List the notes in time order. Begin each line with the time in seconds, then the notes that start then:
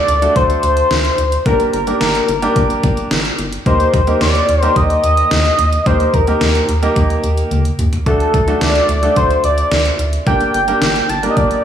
Already playing: D5
0.08 D2, closed hi-hat
0.22 A3 D4 F#4 A4, closed hi-hat
0.36 D2 C5, kick, closed hi-hat
0.50 closed hi-hat
0.63 D2, closed hi-hat
0.77 closed hi-hat
0.91 D2, snare, closed hi-hat
1.05 closed hi-hat
1.18 D2, closed hi-hat
1.32 closed hi-hat
1.46 G1 A#3 D4 G4 A#4, kick, closed hi-hat
1.60 closed hi-hat
1.73 G1 A#4, closed hi-hat
1.87 A#3 D4 G4 A#4, closed hi-hat
2.01 G1, snare, closed hi-hat
2.15 closed hi-hat
2.28 G1, closed hi-hat
2.42 A#3 D4 G4 A#4, closed hi-hat
2.56 G1, kick, closed hi-hat
2.70 closed hi-hat
2.83 G1, kick, closed hi-hat
2.97 closed hi-hat
3.11 G1, snare, closed hi-hat
3.25 closed hi-hat
3.38 G1, closed hi-hat
3.53 closed hi-hat
3.66 D#2 A#3 D#4 G4 A#4 C5, kick, closed hi-hat
3.80 closed hi-hat
3.94 D#2, kick, closed hi-hat
4.07 A#3 D#4 G4 A#4, closed hi-hat
4.21 D#2 D5, snare, closed hi-hat
4.35 closed hi-hat
4.49 D#2, closed hi-hat
4.61 A#3 D#4 G4 A#4 C5, closed hi-hat
4.76 D#2 D#5, kick, closed hi-hat
4.90 closed hi-hat
5.04 D#2, closed hi-hat
5.17 closed hi-hat
5.31 D#2, snare, closed hi-hat
5.45 closed hi-hat
5.59 D#2, closed hi-hat
5.73 closed hi-hat
5.86 D#2 A#3 D#4 G4 A#4 C5, kick, closed hi-hat
6.00 closed hi-hat
6.14 D#2 A#4, kick, closed hi-hat
6.27 A#3 D#4 G4 A#4, closed hi-hat
6.41 D#2, snare, closed hi-hat
6.55 closed hi-hat
6.69 D#2, closed hi-hat
6.82 A#3 D#4 G4 A#4, closed hi-hat
6.96 D#2, kick, closed hi-hat
7.10 closed hi-hat
7.24 D#2, closed hi-hat
7.37 closed hi-hat
7.51 D#2, closed hi-hat, high tom
7.65 closed hi-hat
7.79 D#2, closed hi-hat, mid tom
7.93 closed hi-hat, floor tom
8.06 D2 A3 D4 F#4 A4, kick, closed hi-hat
8.20 closed hi-hat
8.34 D2, kick, closed hi-hat
8.48 A3 D4 F#4 A4, closed hi-hat
8.61 D2 D5, snare, closed hi-hat
8.75 closed hi-hat
8.89 D2, closed hi-hat
9.03 A3 D4 F#4 A4, closed hi-hat
9.16 D2 C5, kick, closed hi-hat
9.30 closed hi-hat
9.44 D2 D5, closed hi-hat
9.58 closed hi-hat
9.71 D2, snare, closed hi-hat
9.85 closed hi-hat
9.99 D2, closed hi-hat
10.13 closed hi-hat
10.27 G1 A#3 D4 G4 A#4 G5, kick, closed hi-hat
10.41 closed hi-hat
10.54 G1 G5, closed hi-hat
10.68 A#3 D4 G4 A#4, closed hi-hat
10.82 G1, snare, closed hi-hat
10.96 closed hi-hat
11.09 G1 A5, closed hi-hat
11.23 A#3 D4 G4 A#4, closed hi-hat
11.30 D#5
11.37 G1 D5, kick, closed hi-hat
11.51 closed hi-hat